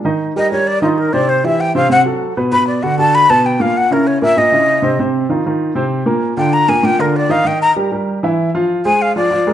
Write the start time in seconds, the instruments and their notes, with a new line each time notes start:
0.05 upright piano D#3 D#4 D#5
0.36 upright piano G3 G4 A#4, flute D#5
0.52 upright piano G3 G4 A#4, flute C#5
0.67 flute D5
0.82 upright piano D#3 D#4 D#5, flute F4
0.98 flute A#4
1.13 upright piano C3 C4 C5, flute D5
1.29 flute C5
1.44 upright piano E3 E4 G4, flute E5
1.60 flute G5
1.75 upright piano C3 C4 C5, flute F5
1.90 upright piano C3 C4 C5, flute F#5
2.05 upright piano F#3 F#4 A4
2.37 upright piano B2 B3 B4
2.52 upright piano B2 B3 B4, flute B5
2.67 flute D5
2.83 upright piano D3 D4 F#4, flute F#5
2.98 upright piano D3 D4 F#4, flute A5
3.15 flute B5
3.30 upright piano B2 B3 B4, flute A5
3.46 flute G5
3.60 upright piano A#2 A#3 A#4, flute F5
3.77 flute F#5
3.91 upright piano C#3 C#4 E4, flute A#4
4.07 flute C#5
4.22 upright piano A#2 A#3 A#4, flute E5
4.37 upright piano A#2 A#3 A#4, flute D#5
4.52 upright piano C#3 C#4 E4
4.82 upright piano C3 C4 C5
4.99 upright piano C3 C4 C5
5.29 upright piano D#3 D#4 F4
5.46 upright piano D#3 D#4 F4
5.75 upright piano C3 C4 C5
6.06 upright piano A#2 A#3 A#4
6.37 upright piano D3 D4 F4, flute G5
6.53 flute A#5
6.68 upright piano A#2 A#3 A#4, flute G#5
6.83 upright piano A#2 A#3 A#4, flute G5
6.99 upright piano D3 D4 F4, flute A#4
7.16 flute D5
7.29 upright piano D#3 D#4 D#5, flute F5
7.45 upright piano D#3 D#4 D#5, flute G5
7.62 flute A#5
7.76 upright piano G3 G4 A#4
7.92 upright piano G3 G4 A#4
8.23 upright piano E3 E4 E5
8.54 upright piano F3 F4 F5
8.85 upright piano G#3 G#4 C5, flute G#5
9.02 flute F5
9.16 upright piano F3 F4 F5, flute D5
9.31 upright piano F3 F4 F5
9.47 upright piano G#3 G#4 A#4